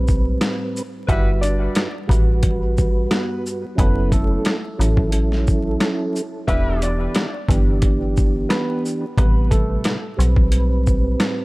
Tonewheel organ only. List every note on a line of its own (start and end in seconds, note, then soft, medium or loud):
0.00 0.81 A2 loud
0.00 0.82 G3 medium
0.00 0.82 C4 medium
0.00 0.82 B4 loud
1.09 1.87 G2 medium
1.09 1.88 G3 medium
1.09 1.88 F#4 medium
1.09 1.89 B4 loud
2.07 3.65 G2 medium
2.07 3.65 G3 medium
2.07 3.65 F#4 medium
2.07 3.66 B4 loud
3.75 4.55 F#3 loud
3.75 4.56 C#4 medium
3.75 4.56 E4 medium
3.75 4.57 A4 loud
4.78 5.09 F#3 loud
4.78 5.10 C#4 medium
4.78 5.11 E4 medium
4.78 5.11 A4 loud
5.11 6.21 F#3 loud
5.11 6.21 C#4 medium
5.11 6.22 E4 medium
5.11 6.22 A4 loud
6.47 7.26 E3 medium
6.47 7.26 B3 medium
6.47 7.27 D4 medium
6.47 7.27 G4 loud
7.48 9.05 E3 medium
7.48 9.05 B3 medium
7.48 9.06 D4 medium
7.48 9.06 G4 loud
9.17 9.96 A2 loud
9.17 9.97 C3 medium
9.17 9.96 G3 medium
9.17 9.97 B4 loud
10.16 10.47 A2 medium
10.16 10.48 G3 medium
10.16 10.49 C4 medium
10.16 10.49 B4 loud
10.48 11.45 A2 loud
10.48 11.45 G3 medium
10.48 11.45 C4 medium
10.48 11.45 B4 loud